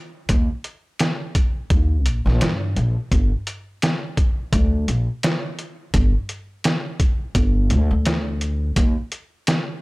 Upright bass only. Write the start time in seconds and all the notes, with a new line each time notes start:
0.29 D#2
1.70 D#2
2.06 A#1
2.26 A#1
2.41 G2
2.76 A#1
3.12 G1
4.53 D2
4.88 A#1
5.94 G1
7.35 G1
7.70 D2
7.91 D2
8.76 D#2